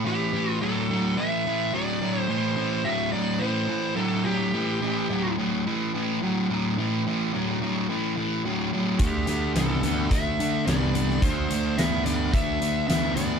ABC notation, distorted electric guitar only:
X:1
M:4/4
L:1/8
Q:1/4=107
K:Am
V:1 name="Distorted electric guitar" clef=bass
[A,,E,] [A,,E,] [A,,^F,] [A,,F,] [A,,E,] [A,,E,] [A,,F,] [A,,F,] | [A,,E,] [A,,E,] [A,,^F,] [A,,F,] [A,,E,] [A,,E,] [A,,F,] [A,,F,] | [A,,E,] [A,,E,] [A,,^F,] [A,,F,] [A,,E,] [A,,E,] [A,,F,] [A,,F,] | [A,,E,] [A,,E,] [A,,^F,] [A,,F,] [A,,E,] [A,,E,] [A,,F,] [A,,F,] |
[D,A,] [D,A,] [D,B,] [D,B,] [D,A,] [D,A,] [D,B,] [D,B,] | [D,A,] [D,A,] [D,B,] [D,B,] [D,A,] [D,A,] [D,B,] [D,B,] |]